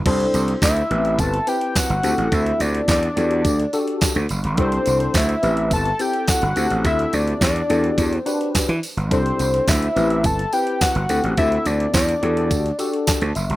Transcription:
0.06 slap bass C2, tine electric piano D4 E4 G4 A4, analog synth lead C5, kick, closed hi-hat, crash, tambourine
0.20 closed hi-hat
0.34 slap bass C2, closed hi-hat, tambourine
0.48 closed hi-hat
0.62 slap bass D2, analog synth lead E5, kick, snare, clap, closed hi-hat, tambourine
0.77 closed hi-hat
0.90 slap bass A1, tine electric piano B3 E4 G4 B4, closed hi-hat
0.97 tine electric piano C4
1.05 closed hi-hat
1.19 slap bass G1, analog synth lead A5, kick, closed hi-hat, tambourine
1.34 closed hi-hat
1.47 tine electric piano C4 E4 G4 B4, analog synth lead G5, closed hi-hat, tambourine
1.61 closed hi-hat
1.76 analog synth lead F#5, kick, snare, clap, closed hi-hat, tambourine
1.90 slap bass G1, closed hi-hat
2.03 slap bass D2, tine electric piano C4 E4 G4 A4, closed hi-hat, tambourine
2.18 slap bass A1, closed hi-hat
2.32 slap bass D2, analog synth lead E5, kick, closed hi-hat, tambourine
2.46 closed hi-hat
2.60 slap bass D2, analog synth lead D5, closed hi-hat, tambourine
2.75 closed hi-hat
2.88 slap bass E2, analog synth lead D5, kick, snare, clap, closed hi-hat, tambourine
3.03 closed hi-hat
3.16 slap bass E2, tine electric piano D4 F#4 G4 A4, closed hi-hat, tambourine
3.31 closed hi-hat
3.45 slap bass D2, kick, closed hi-hat, tambourine
3.60 closed hi-hat
3.73 tine electric piano D4 F#4 G4 A4, closed hi-hat, tambourine
3.88 closed hi-hat
4.01 kick, snare, clap, closed hi-hat, tambourine
4.15 slap bass D2, closed hi-hat
4.29 slap bass F#1, closed hi-hat, tambourine
4.44 slap bass G1, closed hi-hat
4.57 slap bass C2, tine electric piano D4 E4 G4 A4, analog synth lead C5, kick, closed hi-hat
4.72 closed hi-hat
4.86 slap bass C2, closed hi-hat, tambourine
5.00 closed hi-hat
5.14 slap bass D2, analog synth lead E5, kick, snare, clap, closed hi-hat, tambourine
5.29 closed hi-hat
5.42 slap bass A1, tine electric piano C4 E4 G4 B4, closed hi-hat, tambourine
5.57 closed hi-hat
5.71 slap bass G1, analog synth lead A5, kick, closed hi-hat, tambourine
5.86 closed hi-hat
5.99 tine electric piano C4 E4 G4 A4, analog synth lead G5, closed hi-hat, tambourine
6.13 closed hi-hat
6.28 analog synth lead F#5, kick, snare, clap, closed hi-hat, tambourine
6.42 slap bass G1, closed hi-hat
6.56 slap bass D2, tine electric piano C4 E4 G4 A4, closed hi-hat, tambourine
6.70 slap bass A1, closed hi-hat
6.85 slap bass D2, analog synth lead E5, kick, closed hi-hat, tambourine
6.99 closed hi-hat
7.13 slap bass D2, analog synth lead D5, closed hi-hat, tambourine
7.27 closed hi-hat
7.41 slap bass E2, analog synth lead D5, kick, snare, clap, closed hi-hat, tambourine
7.56 closed hi-hat
7.69 slap bass E2, tine electric piano D4 F#4 G4 A4, closed hi-hat, tambourine
7.84 closed hi-hat
7.98 slap bass E2, kick, closed hi-hat, tambourine
8.13 closed hi-hat
8.17 analog synth lead C5
8.26 tine electric piano D4 F#4 G4 B4, closed hi-hat, tambourine
8.41 closed hi-hat
8.55 kick, snare, clap, closed hi-hat, tambourine
8.69 slap bass E3, closed hi-hat
8.83 open hi-hat, tambourine
8.97 slap bass G1, closed hi-hat
9.11 slap bass C2, tine electric piano D4 E4 G4 A4, analog synth lead C5, kick, closed hi-hat, tambourine
9.26 closed hi-hat
9.39 slap bass C2, closed hi-hat, tambourine
9.54 closed hi-hat
9.68 slap bass D2, analog synth lead E5, kick, snare, clap, closed hi-hat, tambourine
9.82 closed hi-hat
9.96 slap bass A1, tine electric piano C4 E4 G4 B4, closed hi-hat, tambourine
10.10 closed hi-hat
10.24 slap bass G1, analog synth lead A5, kick, closed hi-hat, tambourine
10.39 closed hi-hat
10.52 tine electric piano C4 E4 G4 B4, analog synth lead G5, closed hi-hat, tambourine
10.67 closed hi-hat
10.81 analog synth lead F#5, kick, snare, clap, closed hi-hat, tambourine
10.95 slap bass G1, closed hi-hat
11.09 slap bass D2, tine electric piano C4 E4 G4 A4, closed hi-hat, tambourine
11.24 slap bass A1, closed hi-hat
11.37 slap bass D2, analog synth lead E5, kick, closed hi-hat, tambourine
11.52 closed hi-hat
11.66 slap bass D2, analog synth lead D5, closed hi-hat, tambourine
11.80 closed hi-hat
11.94 slap bass E2, analog synth lead D5, kick, snare, clap, closed hi-hat, tambourine
12.09 closed hi-hat
12.22 slap bass E2, tine electric piano D4 F#4 G4 A4, closed hi-hat
12.37 closed hi-hat
12.51 slap bass D2, kick, closed hi-hat, tambourine
12.66 closed hi-hat
12.79 tine electric piano D4 F#4 G4 A4, closed hi-hat, tambourine
12.93 closed hi-hat
13.07 tine electric piano A5, kick, snare, clap, closed hi-hat, tambourine
13.21 slap bass D2, closed hi-hat
13.35 slap bass F#1, tine electric piano E5, closed hi-hat, tambourine
13.50 slap bass G1, closed hi-hat

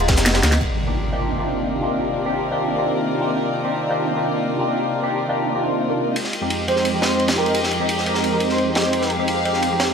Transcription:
Already playing: sub bass D1
0.00 tine electric piano D#4 F4, closed hi-hat
0.08 sub bass F1, tine electric piano G#3 B3 D#4 G#4, kick, snare, closed hi-hat, ride
0.17 snare, ride, shaker
0.26 snare, closed hi-hat, ride, shaker
0.34 tine electric piano G#3 B3 D#4 G4, snare, ride, shaker
0.43 sub bass D2, snare, closed hi-hat, ride, shaker
0.52 snare, closed hi-hat
0.61 string section D#3 C4 F4 A#4 D5, impact
0.86 tine electric piano C3 A#3 D4 D#4 F4 G4
1.12 tine electric piano C3 A#3 D4 D#4 F4 G4
1.37 tine electric piano C3 A#3 D4 D#4 F4 G4
1.81 tine electric piano C3 A#3 D4 D#4 F4 G4
2.25 tine electric piano C3 A#3 D4 D#4 F4 G4
2.51 tine electric piano C3 A#3 D4 D#4 F4 G4
2.76 tine electric piano C3 A#3 D4 D#4 F4 G4
3.19 tine electric piano C3 A#3 D4 D#4 F4 G4
3.63 tine electric piano C3 A#3 D4 D#4 F4 G4
3.89 tine electric piano C3 A#3 D4 D#4 F4 G4
4.15 tine electric piano C3 A#3 D4 D#4 F4 G4
4.58 tine electric piano C3 A#3 D4 D#4 F4 G4
5.02 tine electric piano C3 A#3 D4 D#4 F4 G4
5.28 tine electric piano C3 A#3 D4 D#4 F4 G4
5.54 tine electric piano C3 A#3 D4 D#4 F4 G4
5.63 tine electric piano C3 A#3 D4 D#4 F4 C5
5.89 tine electric piano C3 A#3 D4 D#4 F4 A#4
6.16 string section G#3 G4 D#5, ride
6.24 snare
6.33 ride
6.41 tine electric piano F2 G#3 C4 D#4 G4
6.50 ride
6.67 tine electric piano F2 G#3 C4 D#4 G4, soft synth lead C5, ride
6.76 snare
6.85 ride
6.92 tine electric piano F2 G#3 C4 D#4 G4
7.02 soft synth lead C5, snare, ride
7.20 ride
7.28 snare, ride
7.36 tine electric piano F2 G#3 C4 D#4 G4, soft synth lead A#4
7.46 ride
7.54 ride
7.63 snare
7.71 ride
7.80 tine electric piano F2 G#3 C4 D#4 G4
7.89 ride
7.98 snare
8.06 tine electric piano F2 G#3 C4 D#4 G4, soft synth lead A#4, ride
8.14 snare
8.24 ride
8.31 tine electric piano F2 G#3 C4 D#4 G4
8.40 ride
8.49 soft synth lead C5, snare
8.58 ride
8.74 tine electric piano F2 G#3 C4 D#4 G4, snare, ride
8.84 soft synth lead C5
8.93 string section F5, ride
9.02 snare
9.10 ride
9.18 tine electric piano F2 G#3 C4 D#4 G4
9.28 ride
9.44 tine electric piano F2 G#3 C4 D#4 G4, ride
9.54 snare
9.62 ride
9.70 tine electric piano F2 G#3 C4 D#4 G4
9.80 snare, ride

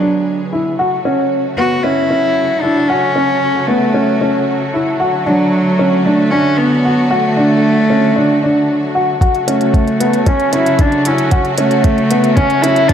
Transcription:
Already playing: string section D3 G#3 B3 G#4, cello F#3
0.00 upright piano D4
0.53 upright piano E4
0.79 string section C#3 F#3 A3 F#4, upright piano F#4
1.05 upright piano C#4
1.58 upright piano B3, cello F#4
1.83 upright piano C#4, cello E4
2.11 upright piano C#4
2.61 cello D4, upright piano E4
2.88 cello C#4, upright piano F#4
3.16 upright piano C#4
3.67 cello A3, upright piano B3
3.94 upright piano C#4
4.21 upright piano C#4
4.74 upright piano E4
5.00 string section D3 F#4, upright piano F#4
5.26 cello F#3, upright piano D4
5.79 upright piano C#4
6.05 cello A3, upright piano D4
6.31 cello C#4, upright piano D4
6.57 cello B3
6.85 upright piano F#4
7.10 cello A3, upright piano F#4
7.37 upright piano D4
7.90 upright piano C#4
8.16 upright piano D4
8.43 upright piano D4
8.95 upright piano F#4
9.21 string section C#3 F#3 A3 F#4, upright piano F#4, kick, closed hi-hat
9.35 closed hi-hat
9.47 cello A3, upright piano C#4, closed hi-hat
9.61 closed hi-hat
9.74 kick, closed hi-hat
9.88 closed hi-hat
10.00 upright piano B3, closed hi-hat
10.13 closed hi-hat
10.26 upright piano C#4, cello C#4, kick, closed hi-hat
10.40 closed hi-hat
10.53 upright piano C#4, cello E4, closed hi-hat
10.66 closed hi-hat
10.79 cello D4, kick, closed hi-hat
10.92 closed hi-hat
11.05 cello C#4, upright piano E4, closed hi-hat
11.18 closed hi-hat
11.31 upright piano F#4, kick, closed hi-hat
11.45 closed hi-hat
11.58 cello A3, upright piano C#4, closed hi-hat
11.71 closed hi-hat
11.84 kick, closed hi-hat
11.98 closed hi-hat
12.11 upright piano B3, closed hi-hat
12.24 closed hi-hat
12.35 cello C#4, upright piano C#4, kick, closed hi-hat
12.50 closed hi-hat
12.62 upright piano C#4, cello E4, closed hi-hat
12.76 closed hi-hat
12.88 cello D4, kick, closed hi-hat

